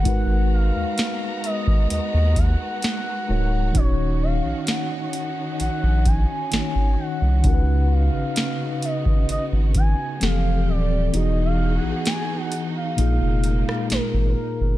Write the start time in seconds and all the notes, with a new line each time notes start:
Already playing: F#4 F#5
0.04 G#1 G#3 B3 D#4 F#4 A#4 A#5, kick, closed hi-hat
0.09 B4
0.54 F5
0.75 D#2
0.98 snare, closed hi-hat
1.44 D#5, closed hi-hat
1.67 kick
1.90 D#2 D#5, closed hi-hat
2.14 D#2
2.36 F#5, kick, closed hi-hat
2.82 snare, closed hi-hat
3.28 D1 G#3 D#4 F#4 A#4 C#5
3.72 D#1 D#3 C#4 D#4, kick, closed hi-hat
3.76 F#4 C#5
4.23 F5
4.44 A#1
4.67 F#5, snare, closed hi-hat
5.13 closed hi-hat
5.60 A#1 F#5, closed hi-hat
5.83 A#1
6.06 G#5, kick, closed hi-hat
6.51 G#1 D#3 C#4 D#4 F#4 C#5, snare, closed hi-hat
6.75 G#1
7.00 F#5
7.21 C2
7.42 C#2 C#3 B3 C#4 D#4, kick, closed hi-hat
7.46 F#4 A#4
7.54 B4
7.92 F5
8.13 G#1
8.36 snare, closed hi-hat
8.82 D#5, closed hi-hat
9.05 kick
9.29 G#1 D#5, closed hi-hat
9.52 G#1
9.74 G#5, kick, closed hi-hat
10.20 F1 E3 F3 G3 C4 G4 A4 F5, snare, closed hi-hat
10.67 D#1 D5
11.11 E1 E3 B3 D#4 F#4 G#4 D#5, closed hi-hat
11.15 F#4 G#4
11.45 F5
11.76 F#5
11.83 A#1
12.05 G#5, snare, closed hi-hat
12.37 F#5
12.52 closed hi-hat
12.76 F5
12.96 A#1 A#2 G#3 A#3 D#4 F4, closed hi-hat
13.01 G#4
13.21 F1
13.44 closed hi-hat
13.69 cross-stick
13.90 G#1 A#4, snare, closed hi-hat
14.13 G#1
14.60 G1